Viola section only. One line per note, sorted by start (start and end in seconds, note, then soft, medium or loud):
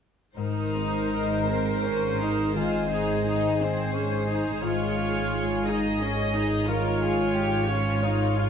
0.37 1.44 D#4 soft
1.48 1.84 C4 soft
1.84 2.19 C#4 soft
2.19 2.55 D#4 soft
2.55 2.90 F4 soft
2.90 3.24 D#4 soft
3.25 3.59 D#4 soft
3.60 3.94 C4 soft
3.93 4.27 C#4 soft
4.27 4.61 D#4 soft
4.62 5.68 F4 soft
5.67 6.01 D#4 soft
6.01 6.35 C#4 soft
6.34 6.68 D#4 soft
6.68 7.69 F4 soft
7.69 8.02 C#4 soft
8.03 8.36 D#4 soft
8.37 8.49 F4 soft